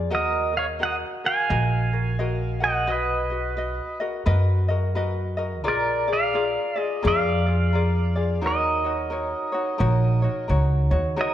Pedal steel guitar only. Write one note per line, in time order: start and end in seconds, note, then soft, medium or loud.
0.15 0.53 A#4 medium
0.15 0.57 D#5 medium
0.57 0.65 C#5 medium
0.57 0.64 F5 medium
0.83 0.96 D#5 medium
0.83 0.94 F#5 medium
1.26 2.60 F5 medium
1.26 2.68 G#5 loud
2.64 2.89 D#5 medium
2.64 2.90 F#5 medium
2.90 3.98 B4 medium
2.90 3.98 D#5 medium
5.68 6.07 A#4 medium
5.68 6.11 D5 medium
6.13 7.02 D5 medium
6.13 6.80 F5 loud
6.80 7.07 D#5 loud
7.07 8.40 D5 medium
7.07 8.49 F5 medium
8.46 10.47 A#4 medium
8.46 10.48 D#5 medium
11.21 11.34 A#4 medium
11.21 11.34 D#5 medium